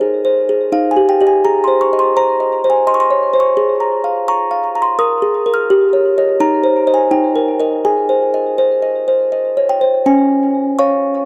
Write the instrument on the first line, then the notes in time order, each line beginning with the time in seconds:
music box
Already playing: D#4 C5 D#5
0.01 G#4
0.25 C5
0.49 G#4
0.72 D#4 F5
0.91 G#5
0.96 G4
1.09 G5
1.21 G4 D#5
1.27 G#5
1.45 G#4 A#5
1.64 C5 C6
1.81 C#6
1.93 D#5
1.99 C6
2.17 C5 A#5
2.40 D#5
2.64 C5
2.70 G#5
2.87 D#5 C6
2.94 C#6
3.00 C6
3.10 C#5
3.33 C5
3.40 C#6
3.57 G#4
3.80 A#5
4.04 F5
4.28 A#5 C#6
4.51 F5
4.75 A#5
4.82 C6
4.99 A#4 D#6
5.22 G#4
5.46 A#4
5.54 F6
5.70 G4
5.93 C#5
6.18 C#5 D#5
6.40 D#4 A#5
6.64 C5
6.87 C5 D#5
6.94 G#5
7.11 D#4 G5
7.36 A#4
7.60 A#4 D#5
7.85 G#4 G#5
8.09 C5
8.34 D#5
8.58 C5
8.82 D#5
9.08 C5
9.32 D#5
9.57 C#5
9.69 G5
9.81 C5
10.06 C#4 G#5
10.79 C#5 F5 C#6